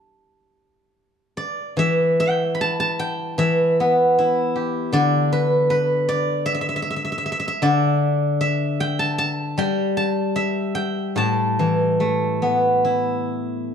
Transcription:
guzheng
Already playing: A5
1.37 D5
1.77 E3 E5
2.20 G5
2.55 B5
2.61 A5
2.80 A5
2.99 G5
3.38 E3 E5
3.80 B3
4.19 E4
4.56 G4
4.93 D3 D5
5.32 B4
5.70 B4
6.09 D5
6.46 E5
6.54 E5
6.61 E5
6.69 E5
6.76 E5
6.82 E5
6.90 E5
6.96 E5
7.05 E5
7.12 E5
7.18 E5
7.26 E5
7.32 E5
7.40 E5
7.48 E5
7.62 D3 D5
8.41 E5
8.80 G5
8.99 A5
9.18 A5
9.58 G3 G5
9.97 A5
10.36 E5
10.75 G5
11.16 A2 A5
11.59 E3
12.00 A3
12.42 B3
12.85 E4

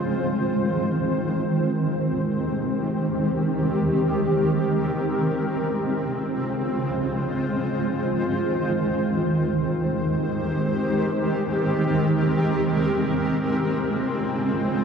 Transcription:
ambient pad
Already playing: D#3 G#3 C4 F4 C5
1.58 D#3 G4
3.53 A#4
5.47 C#3 G#3 F4 C5
7.43 D#3
9.38 D#3 G#3 C4 G4 C5
11.33 A#4
13.28 C#3 F4 C5

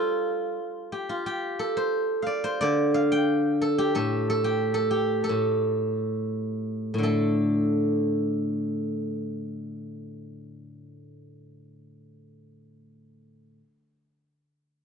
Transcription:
guzheng
Already playing: G3 F4 G4 A4 C5
0.92 G4
1.09 F4
1.26 G4
1.59 A4
1.77 C5
2.22 F5
2.27 D5
2.44 C5
2.61 D3 D5
2.94 F5
3.12 G5
3.62 A4
3.78 G4
3.95 A2 A4
4.30 A4
4.44 G4
4.74 A4
4.91 G4
5.24 A4
5.29 A2
6.94 A2
6.98 D3
7.03 A3 A4

